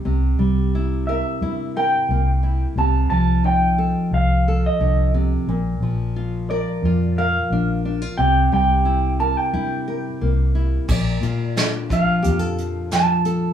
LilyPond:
<<
  \new Staff \with { instrumentName = "Clean electric guitar" } { \time 4/4 \key c \mixolydian \tempo 4 = 89 r4. e''4 g''4. | a''8 a''8 g''4 f''8. ees''8. r8 | r4. d''4 f''4. | g''8 g''4 a''16 g''4.~ g''16 r8 |
d''4. f''4. a''4 | }
  \new Staff \with { instrumentName = "Nylon-string guitar" } { \time 4/4 \key c \mixolydian << { r4 e'8 bes'8 e'8 bes'8 bes8 e'8 | r4 ees'8 a'4 a'4. | r4 f'8 bes'8 f'8 bes'8 d'8 d'16 f'16 | r4 e'8 bes'8 e'8 bes'8 bes8 e'8 |
r8 f'8 d'8 f'8 g'16 a'8. f'8 a'8 | } \\ { c8 g2.~ g8 | c8 f2~ f8 d8 c8 | bes,8 f2.~ f8 | c8 g2.~ g8 |
bes,4. f4. f4 | } >> }
  \new Staff \with { instrumentName = "Fingered electric bass" } { \clef bass \time 4/4 \key c \mixolydian c,8 c,4. g,4 c,4 | c,8 c,4. c,4 c,4 | bes,,8 bes,,4. f,4 bes,,4 | c,8 c,4. g,4 c,4 |
bes,,8 bes,4. f,2 | }
  \new DrumStaff \with { instrumentName = "Drums" } \drummode { \time 4/4 r4 r4 r4 r4 | r4 r4 r4 r4 | r4 r4 r4 r4 | r4 r4 r4 r4 |
<cymc bd>8 hh8 <hh sn>8 <hh bd>8 hh8 hh8 <hh sn>8 hh8 | }
>>